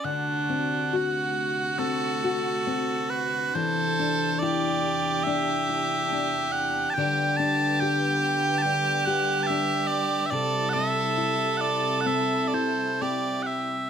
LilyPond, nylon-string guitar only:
\new Staff \with { instrumentName = "Nylon-string guitar" } { \time 4/4 \key d \mixolydian \tempo 4 = 70 d8 c'8 fis'4 c'8 fis'8 c'4 | e8 d'8 e'4 d'8 e'8 d'4 | d8 d'8 g'4 d'8 g'8 d'4 | c8 c'8 e'4 c'8 e'8 c'4 | }